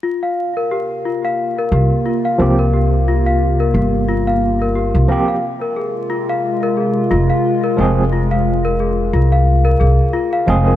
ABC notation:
X:1
M:4/4
L:1/16
Q:"Swing 16ths" 1/4=89
K:Cphr
V:1 name="Celesta"
F f2 B G2 F f2 B G2 F f2 B | G2 F f2 B G2 F f2 B G2 F f | z B A2 F f2 B A2 F f2 B A2 | F f2 B A2 F f2 B A2 F f2 B |]
V:2 name="Tine electric piano"
z12 z2 [F,B,CG]2 | z12 z2 [F,B,CG]2 | z12 z2 [F,A,CA]2 | z12 z2 [F,A,CA]2 |]
V:3 name="Ambient pad"
[C,B,F]16- | [C,B,F]16 | [C,A,F]16- | [C,A,F]16 |]
V:4 name="Upright bass" clef=bass
z8 z2 C,, z3 C,,2- | C,,6 G,,,6- G,,, C,, z2 | z8 z2 F,,, z3 F,,,2- | F,,,6 C,,4 C,, z3 F,,,2 |]